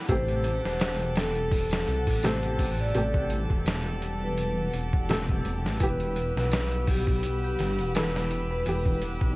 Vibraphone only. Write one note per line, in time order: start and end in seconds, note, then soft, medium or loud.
0.10 0.59 C5 loud
0.66 1.12 C5 medium
1.18 1.66 A4 medium
1.73 2.19 A4 medium
2.25 2.74 C5 medium
2.80 3.27 D5 medium
4.24 4.70 B4 medium
5.82 6.31 B4 loud
6.37 6.84 B4 medium
6.89 7.38 G4 medium
7.44 7.91 G4 medium
7.96 8.45 B4 medium
8.51 8.98 B4 loud